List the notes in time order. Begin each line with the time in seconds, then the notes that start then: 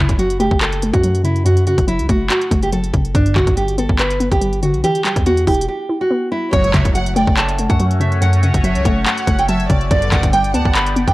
Already playing: F#1 F#2 E4
0.00 C#3
0.09 kick, closed hi-hat
0.19 F#3 F#4, closed hi-hat
0.30 closed hi-hat
0.40 A3 G4, closed hi-hat
0.51 F#1, kick
0.61 A4, clap, closed hi-hat
0.72 closed hi-hat
0.82 A3, closed hi-hat
0.93 F#2 F#4, kick, closed hi-hat
1.04 F#3, closed hi-hat
1.15 closed hi-hat
1.24 C#3 E4, closed hi-hat
1.36 closed hi-hat
1.45 F#2 F#4, closed hi-hat
1.57 closed hi-hat
1.67 C#3 F#4, closed hi-hat
1.78 F#1, kick, closed hi-hat
1.88 F#3 E4, closed hi-hat
1.99 C#2, closed hi-hat
2.09 F#1 A3 F#4, kick, closed hi-hat
2.30 F#4, clap, closed hi-hat
2.41 closed hi-hat
2.51 F#1 A3, kick, closed hi-hat
2.63 G4, closed hi-hat
2.73 F#3 A4, closed hi-hat
2.84 closed hi-hat
2.94 F#1 C#3, kick, closed hi-hat
3.05 closed hi-hat
3.15 G1 G2 D4, kick, closed hi-hat
3.26 closed hi-hat
3.36 G1 D3 F#4, kick, clap, closed hi-hat
3.47 G1, kick, closed hi-hat
3.57 G3 G4, closed hi-hat
3.68 closed hi-hat
3.78 B3 A4, closed hi-hat
3.89 G1, kick
3.99 B4, clap, closed hi-hat
4.10 closed hi-hat
4.20 B3, closed hi-hat
4.32 G1 G4, kick, closed hi-hat
4.41 G3, closed hi-hat
4.53 closed hi-hat
4.63 D3 F#4, closed hi-hat
4.74 B1, closed hi-hat
4.84 E3 G4, closed hi-hat
4.95 closed hi-hat
5.04 G3 G4, clap, closed hi-hat
5.16 E2, kick, closed hi-hat
5.26 B3 F#4, closed hi-hat
5.37 closed hi-hat
5.47 E1 E4 G4, kick, closed hi-hat, open hi-hat
5.54 closed hi-hat
5.61 closed hi-hat
5.68 G4
5.89 E4
6.01 F#4
6.10 B3
6.32 G3 E4
6.52 F#1 C#2 F#2 A2 F#3 A3 C#4 F#4 C#5, kick, closed hi-hat
6.64 closed hi-hat
6.74 F#1 C#3 E5, kick, clap, closed hi-hat
6.85 kick, closed hi-hat
6.95 F#3 F#5, closed hi-hat
7.06 closed hi-hat
7.16 A3 D5 G5, closed hi-hat
7.27 F#1, kick
7.37 A5, clap, closed hi-hat
7.49 closed hi-hat
7.58 A3, closed hi-hat
7.69 F#2 F#5, kick, closed hi-hat
7.80 F#3, closed hi-hat
7.91 closed hi-hat
8.00 C#3 E5, closed hi-hat
8.12 closed hi-hat
8.21 F#2 F#5, closed hi-hat
8.33 closed hi-hat
8.43 C#3 F#5, closed hi-hat
8.54 F#1, kick, closed hi-hat
8.64 F#3 C#5 E5, closed hi-hat
8.75 C#2, closed hi-hat
8.85 F#1 A3 F#5, kick, closed hi-hat
9.06 F#5, clap, closed hi-hat
9.18 closed hi-hat
9.27 F#1 A3, kick, closed hi-hat
9.39 G5, closed hi-hat
9.49 F#3 E5 A5, closed hi-hat
9.60 closed hi-hat
9.70 F#1 C#3 D5, kick, closed hi-hat
9.81 closed hi-hat
9.91 G1 B1 G2 D3 B3 D4 G4 D5, kick, closed hi-hat
10.02 closed hi-hat
10.12 G1 D3 F#5, kick, clap, closed hi-hat
10.23 kick, closed hi-hat
10.33 G3 G5, closed hi-hat
10.44 closed hi-hat
10.54 D2 B3 F#5 A5, closed hi-hat
10.65 G1, kick
10.75 B5, clap, closed hi-hat
10.87 closed hi-hat
10.96 B3, closed hi-hat
11.08 G1 G5, kick, closed hi-hat